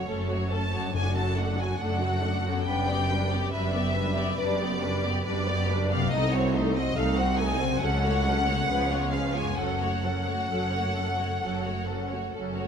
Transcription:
Already playing: harp F#2 A3 C#4 F#4, violin section C#5
0.07 double bass section F#1, cello section F#2, viola section A3 C#4, violin section A4
0.29 viola section F#3 A3, violin section F#4 C#5
0.51 viola section A3 C#4, violin section A4 A5
0.72 harp F#2, viola section F#3 A3, violin section F#4 C#5
0.80 harp A3
0.85 harp D4
0.89 harp A4
0.94 double bass section F#1, timpani F#2, cello section F#2, viola section A3 D4, violin section F#4 A4 G#5
1.16 viola section F#3 F#4, violin section F#4 A4 A5
1.37 viola section A3 D4, violin section F#4 A4 F#5
1.57 viola section F#3 F#4, violin section F#4 A4 G#5
1.79 double bass section F#1, cello section F#2, viola section A3 D4, violin section F#4 A4 F#5
2.00 viola section F#3 F#4, violin section F#4 A4
2.22 viola section A3 D4, violin section F#4 A4
2.44 harp F#2, viola section F#3 F#4, violin section F#4 A4
2.52 harp B3
2.57 harp D4
2.61 harp G4
2.65 double bass section F#1, cello section F#2, viola section G3 D4, violin section B4 G5
2.89 viola section B3, violin section G4 D5
3.10 viola section G3 D4, violin section B4
3.31 viola section B3, violin section G4 D5
3.52 double bass section F#1, cello section F#2, viola section G3 D4, violin section B4 E5
3.74 viola section B3, violin section G4 D5
3.95 viola section G3 D4, violin section B4
4.17 viola section B3, violin section G4 D5
4.38 double bass section F#1, cello section F#2, viola section G3 D4, violin section B4 D5
4.60 viola section B3, violin section G4 D5
4.83 viola section G3 D4, violin section B4
5.04 viola section B3, violin section G4 D5
5.25 double bass section F#1, cello section F#2, viola section G3 D4, violin section B4 D5
5.47 viola section B3, violin section G4 D5
5.69 viola section G3 D4, violin section B4
5.91 harp C3, viola section B3, violin section G4 D5 F5
5.98 harp A3
6.03 harp D#4
6.07 double bass section C2, harp F#4
6.12 cello section C2, viola section A3 D#4, violin section D#4 A4 D#5
6.33 viola section C4, violin section F#4 C5 C#5
6.54 viola section A3 D#4, violin section D#4 A4 C5
6.75 viola section C4, violin section F#4 C5 D#5
6.96 double bass section C2, cello section C2, viola section A3 D#4, violin section D#4 A4 F5
7.17 viola section C4, violin section F#4 C5 F#5
7.38 viola section A3 D#4, violin section D#4 A4 G#5
7.59 harp C#3, viola section C4, violin section F#4 C5
7.67 harp A3
7.72 harp C#4
7.76 harp F#4
7.80 double bass section C#2, cello section C#2, viola section F#3 C#4, violin section A4 F#5
8.03 viola section A3, violin section F#4 C#5
8.24 viola section F#3 C#4, violin section A4
8.47 harp C#3, viola section A3, violin section F#4 C#5
8.55 harp B3
8.59 harp C#4
8.64 double bass section C#2, harp F4
8.69 cello section C#2, viola section F3 C#4, violin section G#4 B4
8.90 viola section G#3 B3, violin section F4 C#5
9.12 viola section F3 C#4, violin section G#4 B4 F5
9.34 viola section G#3 B3, violin section F4 C#5 G#5
9.41 harp F#2
9.45 harp A3
9.49 harp C#4
9.54 double bass section F#1, harp F#4, violin section A4
9.58 cello section F#2, viola section F#3 C#4, violin section F#5
9.80 viola section A3, violin section F#4 C#5
10.04 viola section F#3 C#4, violin section A4
10.27 viola section A3, violin section F#4 C#5
10.50 double bass section F#1, cello section F#2, viola section F#3 C#4, violin section A4
10.72 viola section A3, violin section F#4 C#5
10.95 viola section F#3 C#4, violin section A4
11.18 viola section A3, violin section F#4 C#5
11.41 double bass section F#1, cello section F#2, viola section F#3 C#4, violin section A4
11.65 viola section A3, violin section F#4 C#5
11.87 viola section F#3 C#4, violin section A4
12.10 viola section A3, violin section F#4 C#5
12.33 double bass section F#1, cello section F#2, viola section F#3 C#4, violin section A4
12.56 viola section A3, violin section F#4 C#5

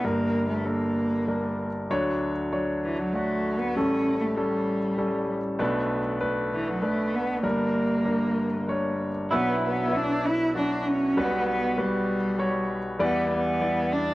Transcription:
0.04 grand piano G1 G2 G3 D4 A#4, cello A#3
0.49 cello A3
0.65 grand piano G3 D4 A4, cello A#3
1.28 grand piano G3 D4 A#4
1.90 grand piano D2 D3 F#3 D4 C#5
2.53 grand piano F#3 D4 C#5
2.84 cello E3
2.99 cello F#3
3.13 grand piano F#3 D4 F#4, cello A3
3.60 cello B3
3.75 grand piano A1 A2 G3 C#4 A4, cello C#4
4.21 cello A3
4.36 cello G3, grand piano G3 C#4 A4
4.98 grand piano G3 C#4 A4
5.59 grand piano B1 B2 A3 D4 B4
6.20 grand piano A3 D4 B4
6.54 cello E3
6.69 cello F#3
6.82 grand piano A3 D4 B4, cello A3
7.15 cello B3
7.43 grand piano G1 G2 G3 D4 A#4, cello A#3
8.05 grand piano G3 D4 A#4
8.68 grand piano G3 D4 C#5
9.31 grand piano B1 B2 F#3 D4 B4, cello B3, clean electric guitar E4
9.65 cello B3
9.92 grand piano F#3 D4 E4, cello D4
10.26 cello E4
10.55 grand piano F#3 D4 F#4, cello D4
10.88 cello C#4
11.17 grand piano B1 B2 G3 F#4 B4, cello B3
11.50 cello B3
11.77 grand piano G3 F#4 B4, cello G3
12.39 grand piano G3 F#4 C#5
12.99 grand piano E2 E3 G3 E4 D5, cello B3
13.32 cello B3
13.61 grand piano G3 E4 D5
13.93 cello D4

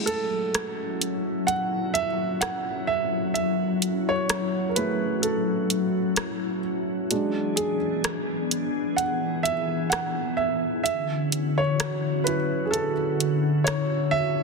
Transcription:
Already playing: ambient pad F#3 C#4 E4 F#4, grand piano G#3 A3 E4 F#4
0.06 grand piano A4, closed hi-hat
0.54 cross-stick, closed hi-hat
1.01 closed hi-hat
1.47 grand piano F#5, closed hi-hat
1.94 grand piano E5, closed hi-hat
2.41 grand piano F#5, cross-stick, closed hi-hat
2.87 grand piano E5
3.34 grand piano E5, closed hi-hat
3.82 closed hi-hat
4.09 grand piano C#5
4.29 cross-stick, closed hi-hat
4.69 grand piano A#4
4.76 grand piano A3 E4 G#4 B4, closed hi-hat
5.22 grand piano A4, closed hi-hat
5.70 closed hi-hat
6.16 cross-stick, closed hi-hat
7.10 ambient pad E3 B3 D4 G#4, grand piano F#3 G#3 D4, closed hi-hat
7.56 grand piano G#4, closed hi-hat
8.04 cross-stick, closed hi-hat
8.51 closed hi-hat
8.96 ambient pad E4, grand piano F#5, closed hi-hat
9.43 grand piano E5, closed hi-hat
9.90 grand piano F#5, cross-stick, closed hi-hat
10.37 grand piano E5
10.84 ambient pad D3 C#4 F#4, grand piano E5, closed hi-hat
11.32 closed hi-hat
11.58 grand piano C#5
11.80 cross-stick, closed hi-hat
12.24 grand piano F#3 C#4 E4 B4, closed hi-hat
12.65 grand piano G#4
12.71 grand piano A4, closed hi-hat
13.20 closed hi-hat
13.64 grand piano C#5, cross-stick, closed hi-hat
14.11 grand piano E5

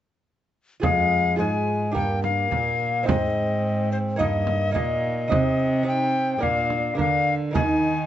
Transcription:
0.80 cello F2, lute F2 F4 G#4 C5, recorder F5, frame drum
0.84 bassoon G#3
1.36 cello G#2, lute G#2 F4 G#4 C5, bassoon G#3, recorder G#5
1.92 lute G2 D4 G4 A#4, cello G2, bassoon A#3, recorder G5
1.96 frame drum
2.23 recorder F5, frame drum
2.51 lute A#2, cello A#2, frame drum
3.03 lute C4 D#4 C5
3.07 lute G#2, cello G#2, bassoon C4, recorder D#5, frame drum
3.92 recorder C5
4.16 cello G2, lute G2 A#3 D#4 D#5, bassoon A#3, recorder D#5
4.21 frame drum
4.47 frame drum
4.71 cello A#2, lute A#2 A#3 D#4 D#5, bassoon A#3, recorder D#5
4.76 frame drum
5.28 cello C3, lute C3 D#4 D#5, bassoon C4, recorder D#5, frame drum
5.83 bassoon C4, lute D#4 D#5
5.87 recorder G5
6.38 cello A#2, lute A#2 A#3 D4 A#4, bassoon D4
6.43 recorder F5, frame drum
6.70 frame drum
6.95 cello D3, lute A#3 D4 A#4, bassoon D4
6.99 lute D3, recorder F5, frame drum
7.51 cello D#3, lute D#3 A#3 D#4 A#4, bassoon D#4, recorder G#5
7.55 frame drum

